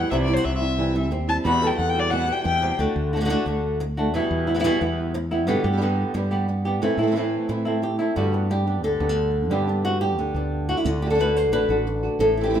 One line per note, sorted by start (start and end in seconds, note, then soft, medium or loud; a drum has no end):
0.00 0.11 E2 medium
0.00 0.11 B2 medium
0.00 0.39 E3 medium
0.00 0.11 G3 soft
0.00 0.11 G3 medium
0.00 0.11 B3 soft
0.00 0.12 B3 medium
0.00 0.10 E4 soft
0.00 0.13 G4 medium
0.00 0.10 F#5 medium
0.11 0.37 C2 medium
0.11 0.27 C3 medium
0.11 0.78 C3 medium
0.11 0.27 E3 medium
0.11 0.28 G3 medium
0.11 0.94 G3 medium
0.11 0.27 C4 medium
0.11 1.11 C4 medium
0.11 0.26 E4 medium
0.11 0.28 E4 medium
0.11 0.16 E5 medium
0.21 0.35 D5 medium
0.28 0.43 G3 soft
0.28 0.44 C4 soft
0.28 0.44 E4 soft
0.28 0.36 E4 medium
0.33 1.45 F#4 soft
0.33 0.46 C5 medium
0.44 1.11 C2 medium
0.44 0.55 E5 medium
0.44 muted nylon-string guitar stroke soft
0.55 1.02 E5 medium
0.60 0.78 G3 soft
0.60 0.78 C4 soft
0.60 0.77 E4 soft
0.78 0.94 C3 medium
0.78 0.95 E3 medium
0.78 0.95 G3 medium
0.78 0.95 C4 medium
0.78 0.94 E4 medium
0.95 1.44 G3 medium
0.95 1.10 G3 soft
0.95 1.10 C4 soft
0.95 1.11 E4 soft
1.11 1.37 D#2 medium
1.11 1.43 C4 medium
1.11 muted nylon-string guitar stroke medium
1.27 1.44 G3 soft
1.27 1.45 C4 soft
1.27 1.44 E4 soft
1.27 1.36 A5 medium
1.44 2.79 E2 medium
1.44 1.71 E2 medium
1.44 1.61 B2 medium
1.44 1.61 E3 medium
1.44 1.61 G3 medium
1.44 2.27 G3 medium
1.44 1.61 B3 medium
1.44 2.79 B3 medium
1.44 1.60 F#4 medium
1.44 1.62 F#4 medium
1.44 1.68 B5 loud
1.61 1.78 G3 soft
1.61 1.78 B3 soft
1.61 1.78 F#4 soft
1.61 2.78 A4 medium
1.67 1.78 G5 medium
1.78 2.30 E2 medium
1.78 1.91 F#5 medium
1.78 muted nylon-string guitar stroke medium
1.89 2.01 G5 medium
1.94 2.11 G3 soft
1.94 2.11 B3 soft
1.94 2.11 F#4 soft
2.00 2.12 D5 medium
2.10 2.28 B2 medium
2.10 2.28 E3 medium
2.10 2.77 E3 medium
2.10 2.28 G3 medium
2.10 2.27 B3 medium
2.10 2.26 F#4 medium
2.10 2.34 F#5 medium
2.27 2.79 G3 medium
2.27 2.43 G3 soft
2.27 2.44 B3 soft
2.27 2.44 F#4 soft
2.32 2.44 G5 medium
2.44 2.71 E2 medium
2.44 2.62 B2 medium
2.44 2.76 G5 medium
2.44 muted nylon-string guitar stroke medium
2.61 2.79 C3 medium
2.61 2.79 G3 soft
2.61 2.79 B3 soft
2.61 2.78 F#4 soft
2.79 2.86 D2 medium
2.79 3.12 D3 medium
2.79 3.12 A3 medium
2.79 3.13 D4 medium
2.79 3.12 F#4 medium
2.96 3.34 D2 medium
3.13 3.20 D3 soft
3.13 3.17 A3 soft
3.13 3.16 D4 soft
3.13 3.20 D4 soft
3.13 3.16 F#4 soft
3.17 3.24 D3 medium
3.17 3.24 A3 medium
3.17 3.20 F#4 medium
3.21 3.28 D3 medium
3.21 3.29 A3 medium
3.21 3.25 D4 medium
3.21 3.25 F#4 medium
3.26 3.45 D3 medium
3.26 3.29 D4 medium
3.26 3.29 F#4 medium
3.30 3.45 A3 medium
3.30 3.46 D4 medium
3.30 3.46 F#4 medium
3.46 4.13 D2 medium
3.46 3.79 D3 soft
3.46 3.79 A3 medium
3.46 3.80 D4 medium
3.46 3.80 F#4 medium
3.80 muted nylon-string guitar stroke medium
3.97 4.14 A3 soft
3.97 4.14 D4 soft
3.97 4.13 F#4 medium
4.13 4.20 E2 medium
4.13 4.47 B2 medium
4.13 4.47 E3 medium
4.13 4.47 G3 medium
4.13 4.47 B3 medium
4.13 4.46 E4 medium
4.31 4.69 E2 medium
4.47 4.54 G3 soft
4.47 4.55 B3 soft
4.47 4.55 E4 medium
4.55 4.58 E3 medium
4.55 4.59 G3 soft
4.55 4.59 B3 medium
4.55 4.59 E4 medium
4.59 4.63 E3 medium
4.59 4.64 G3 medium
4.59 4.64 B3 medium
4.59 4.64 E4 medium
4.64 4.80 B2 medium
4.64 4.79 E3 medium
4.64 4.80 G3 medium
4.64 4.81 B3 medium
4.64 4.81 E4 medium
4.81 5.48 E2 medium
4.81 5.13 E3 soft
4.81 5.14 G3 medium
4.81 5.14 B3 medium
4.81 5.14 E4 medium
5.14 muted nylon-string guitar stroke medium
5.31 5.46 G3 soft
5.31 5.47 B3 medium
5.31 5.47 E4 medium
5.47 5.55 G2 medium
5.47 5.64 B2 medium
5.47 5.64 D3 medium
5.47 5.64 G3 medium
5.47 5.64 B3 medium
5.47 5.63 G4 medium
5.47 muted nylon-string guitar stroke medium
5.64 6.03 G2 loud
5.64 5.80 G3 soft
5.64 5.81 B3 soft
5.64 5.80 G4 medium
5.72 5.76 G3 soft
5.72 5.76 B3 soft
5.72 5.77 D4 soft
5.72 5.77 G4 soft
5.77 6.13 D3 medium
5.77 5.81 G3 medium
5.77 5.81 B3 medium
5.77 5.81 D4 medium
5.77 5.81 G4 medium
5.82 6.13 D3 medium
5.82 6.13 G3 medium
5.82 6.15 G3 medium
5.82 6.13 B3 medium
5.82 6.15 B3 medium
5.82 6.15 D4 medium
5.82 6.15 G4 medium
5.82 6.14 G4 medium
6.14 6.82 G2 medium
6.14 6.47 D3 medium
6.14 6.48 G3 medium
6.14 6.47 B3 medium
6.14 6.48 D4 medium
6.14 6.48 G4 medium
6.14 muted nylon-string guitar stroke medium
6.31 6.65 G3 soft
6.31 6.65 B3 soft
6.31 6.64 G4 soft
6.48 muted nylon-string guitar stroke medium
6.65 6.81 G3 soft
6.65 6.82 B3 medium
6.65 6.83 B3 soft
6.65 6.82 D4 soft
6.65 6.81 G4 soft
6.65 6.81 G4 medium
6.82 6.88 A2 medium
6.82 6.98 E3 medium
6.82 6.98 A3 medium
6.82 6.98 C4 medium
6.82 6.97 E4 medium
6.82 muted nylon-string guitar stroke medium
6.97 7.37 A2 medium
6.97 7.15 A3 soft
6.97 7.15 C4 soft
6.97 7.15 E4 medium
7.02 7.06 E3 soft
7.02 7.06 A3 soft
7.02 7.06 C4 soft
7.02 7.07 E4 soft
7.07 7.10 E3 soft
7.07 7.11 A3 soft
7.07 7.11 C4 medium
7.07 7.11 E4 medium
7.11 7.15 E3 medium
7.11 7.15 A3 medium
7.11 7.15 C4 medium
7.11 7.16 E4 medium
7.16 7.47 E3 medium
7.16 7.48 E3 medium
7.16 7.48 A3 medium
7.16 7.48 A3 soft
7.16 7.49 C4 medium
7.16 7.48 C4 medium
7.16 7.50 E4 medium
7.16 7.48 E4 medium
7.49 8.00 A2 medium
7.49 7.81 E3 soft
7.49 7.82 A3 medium
7.49 7.82 C4 medium
7.49 7.82 E4 medium
7.49 muted nylon-string guitar stroke medium
7.65 8.00 A3 soft
7.65 7.99 C4 soft
7.65 7.83 E4 soft
7.82 7.98 G4 medium
7.82 muted nylon-string guitar stroke soft
7.99 8.16 A3 soft
7.99 8.17 A3 soft
7.99 8.16 C4 soft
7.99 8.15 E4 soft
7.99 8.16 E4 soft
8.16 8.83 G2 medium
8.16 9.49 G2 medium
8.16 8.32 D3 medium
8.16 8.33 G3 medium
8.16 8.33 B3 medium
8.16 8.32 D4 medium
8.16 8.50 F#4 medium
8.16 8.31 G4 medium
8.32 8.99 B3 soft
8.32 8.49 B3 soft
8.32 8.49 D4 soft
8.32 8.49 G4 soft
8.50 8.66 G3 soft
8.50 8.66 B3 soft
8.50 8.66 D4 soft
8.50 8.84 G4 medium
8.50 8.65 G4 soft
8.66 8.83 B3 soft
8.66 9.00 D4 soft
8.66 8.83 D4 soft
8.66 8.83 G4 soft
8.83 8.96 D2 medium
8.83 10.17 D3 medium
8.83 9.51 A4 medium
8.83 muted nylon-string guitar stroke soft
9.00 9.51 D2 medium
9.00 9.09 B3 soft
9.00 9.50 B3 soft
9.00 9.51 D4 soft
9.00 9.50 G4 soft
9.09 9.51 D4 soft
9.50 10.84 G2 medium
9.50 10.18 G2 medium
9.50 9.67 D3 medium
9.50 9.67 G3 medium
9.50 9.67 B3 medium
9.50 9.67 D4 medium
9.50 9.84 G4 medium
9.50 9.66 G4 medium
9.67 10.84 B3 soft
9.67 9.84 B3 soft
9.67 9.84 D4 soft
9.67 9.84 G4 soft
9.84 10.01 G3 soft
9.84 10.01 B3 soft
9.84 10.02 D4 soft
9.84 10.00 F#4 medium
9.84 10.00 G4 medium
10.01 10.18 B3 soft
10.01 10.18 D4 soft
10.01 10.68 G4 medium
10.01 10.17 G4 soft
10.18 10.31 D2 medium
10.18 10.85 D3 medium
10.18 muted nylon-string guitar stroke medium
10.34 10.73 D2 medium
10.34 10.86 B3 soft
10.34 10.85 D4 soft
10.34 10.85 G4 soft
10.69 10.77 F#4 medium
10.77 10.86 E4 medium
10.85 11.52 D2 medium
10.85 12.21 D3 medium
10.85 11.02 F#4 medium
10.85 muted nylon-string guitar stroke medium
11.02 11.09 D3 soft
11.02 11.09 A3 soft
11.02 11.09 D4 soft
11.02 11.10 G4 medium
11.07 11.13 D3 medium
11.07 11.14 A3 soft
11.07 11.14 D4 soft
11.07 11.10 F#4 soft
11.07 11.53 A4 medium
11.11 11.17 D3 medium
11.11 11.18 A3 medium
11.11 11.14 F#4 medium
11.15 11.51 D3 medium
11.15 11.51 A3 medium
11.15 11.19 D4 medium
11.15 11.19 F#4 medium
11.20 11.52 D4 medium
11.20 11.53 F#4 medium
11.20 11.36 B4 medium
11.36 11.52 C5 medium
11.52 11.65 A1 medium
11.52 11.69 D3 medium
11.52 11.69 A3 medium
11.52 12.18 D4 medium
11.52 11.69 D4 medium
11.52 11.68 F#4 medium
11.52 12.20 B4 loud
11.69 12.08 A1 medium
11.69 11.86 A3 soft
11.69 11.86 D4 soft
11.69 11.86 F#4 soft
11.69 12.18 A4 soft
11.87 muted nylon-string guitar stroke medium
12.03 12.21 A3 soft
12.03 12.20 D4 soft
12.03 12.19 F#4 soft
12.19 12.60 A1 medium
12.19 12.60 A2 medium
12.19 12.43 A4 medium
12.19 muted nylon-string guitar stroke medium
12.37 12.44 E3 soft
12.37 12.44 A3 soft
12.37 12.44 C4 soft
12.37 12.60 E4 soft
12.37 12.45 E4 soft
12.44 12.48 E3 medium
12.44 12.49 A3 soft
12.44 12.49 C4 medium
12.44 12.50 E4 soft
12.44 12.60 G4 medium
12.49 12.53 E3 medium
12.49 12.53 A3 medium
12.49 12.53 C4 medium
12.49 12.54 E4 medium
12.54 12.60 E3 medium
12.54 12.60 A3 medium
12.54 12.60 C4 medium
12.54 12.60 E4 medium